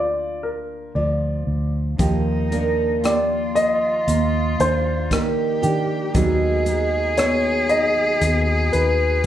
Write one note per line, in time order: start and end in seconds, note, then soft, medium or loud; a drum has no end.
0.00 0.91 D2 medium
0.00 1.93 D3 medium
0.00 0.29 F3 soft
0.00 1.93 A#3 soft
0.00 1.93 D4 soft
0.00 1.94 F4 soft
0.00 1.97 F4 medium
0.00 0.45 D5 medium
0.43 0.91 A#4 medium
0.95 1.44 D2 medium
0.95 1.93 F3 soft
0.95 1.69 D5 medium
1.47 1.96 D2 medium
1.98 6.12 D#2 medium
1.98 4.03 D#2 medium
1.98 6.15 F3 medium
1.98 2.51 A#3 medium
1.98 2.99 D#4 medium
1.98 3.03 G4 medium
1.98 kick medium
1.98 closed hi-hat medium
2.52 6.09 A#3 medium
2.52 3.55 D4 medium
2.52 closed hi-hat soft
3.04 4.07 A#3 medium
3.04 5.14 F4 medium
3.04 5.61 G4 medium
3.04 3.52 D5 medium
3.04 cross-stick medium
3.04 closed hi-hat medium
3.55 4.55 D#5 loud
3.55 closed hi-hat soft
4.08 4.56 D#2 medium
4.08 5.11 A#3 medium
4.08 closed hi-hat medium
4.60 5.08 D#2 medium
4.60 5.62 D4 soft
4.60 5.13 C5 medium
4.60 closed hi-hat soft
5.11 9.23 D#3 medium
5.11 6.25 A#3 medium
5.11 6.17 G4 medium
5.11 5.86 A#4 medium
5.11 kick medium
5.11 cross-stick medium
5.11 closed hi-hat medium
5.62 6.12 D#3 medium
5.62 6.25 D4 medium
5.62 6.08 G4 medium
5.62 closed hi-hat soft
6.14 9.26 D#2 medium
6.14 8.17 D#2 medium
6.14 9.26 F#3 medium
6.14 6.65 G#3 medium
6.14 7.17 B3 medium
6.14 9.26 D#4 medium
6.14 9.26 G#4 loud
6.14 kick medium
6.14 closed hi-hat medium
6.65 9.26 G#3 soft
6.65 7.69 D#4 soft
6.65 closed hi-hat soft
7.17 9.26 B3 medium
7.17 8.20 B3 medium
7.17 7.71 C#5 medium
7.17 cross-stick medium
7.17 closed hi-hat medium
7.69 8.72 D#4 medium
7.69 8.69 D#5 medium
7.69 closed hi-hat soft
8.21 8.70 D#2 medium
8.21 9.23 B3 medium
8.21 closed hi-hat medium
8.73 9.22 D#2 medium
8.73 9.26 D#4 soft
8.73 9.26 B4 medium
8.73 closed hi-hat soft